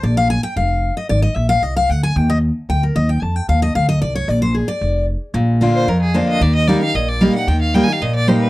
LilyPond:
<<
  \new Staff \with { instrumentName = "Fiddle" } { \time 4/4 \key bes \mixolydian \tempo 4 = 226 r1 | r1 | r1 | r1 |
r1 | r4. c''8 bes'8 aes'8 c''8 ees''8 | d''8 ees''8 d''8 f''8 ees''8 d''8 f''8 ges''8 | g''8 f''8 \tuplet 3/2 { g''8 aes''8 f''8 } ees''8 d''8 c''8 ces''8 | }
  \new Staff \with { instrumentName = "Steel-string acoustic guitar" } { \time 4/4 \key bes \mixolydian << { d''8 f''8 aes''8 g''8 f''4. ees''8 | d''8 ees''8 e''8 f''8 ees''8 f''8 ges''8 aes''8 | g''8 ees''8 r4 g''8 bes'8 ees''8 g''8 | a''8 g''8 f''8 ees''8 f''8 ees''8 d''8 des''8 |
d''8 c''8 aes'8 d''4. r4 | r4 <d bes d' f'>4 r4 <d bes d' f'>4 | r4 <g bes ees' g'>8 <ees' g'>8 r4 <g bes ees' g'>8 <ees' g'>8 | r4 <g bes ees' g'>8 <ees' g'>8 r4 <g bes ees' g'>4 | } \\ { r1 | r1 | r1 | r1 |
r1 | bes,2 f,2 | ees2 bes,2 | ees2 bes,2 | } >> }
  \new Staff \with { instrumentName = "Upright bass" } { \clef bass \time 4/4 \key bes \mixolydian bes,,2 f,,2 | aes,,4 bes,,4 c,4 d,4 | ees,2 d,4 ees,4 | f,4 ees,4 d,4 c,4 |
bes,,2 f,,2 | bes,,2 f,2 | ees,2 bes,,2 | ees,2 bes,,2 | }
>>